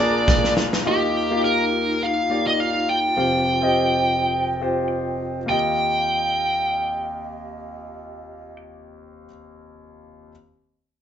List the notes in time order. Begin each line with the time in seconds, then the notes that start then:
Already playing: A#1 A#2 G#4 A#4 D5 A#5
0.00 A#3 D4 F4 G#4 D5
0.28 kick, snare
0.44 snare
0.57 snare
0.73 snare
0.85 D#2 D#3 A#3 D#4 F4 G4 D#5
1.31 A#3 F4 G4 F5
1.45 A#4
2.03 F5
2.30 A#3 F4 G4 D5
2.47 D#5
2.60 F5
2.89 G5
3.16 F1 F2 C4 F4 G4 C5 F5 G5
3.62 C4 F4 G4 D#5
4.61 C4 F4 G4 C5
5.46 D#2 A#3 F4 G4 D#5 F5 G5
5.51 D#5